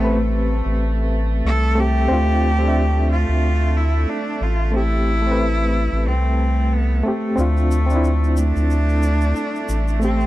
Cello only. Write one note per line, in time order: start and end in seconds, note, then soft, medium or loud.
0.00 0.17 B3 medium
0.15 1.13 A3 medium
1.46 1.81 A4 loud
1.79 3.10 G4 loud
3.10 3.78 F4 loud
3.77 4.10 E4 loud
4.09 4.44 D4 loud
4.42 4.75 F4 medium
4.75 6.08 E4 loud
6.07 6.74 C4 medium
6.73 7.07 B3 medium
7.06 8.40 A3 loud
8.38 10.02 D4 loud
10.03 10.27 C4 loud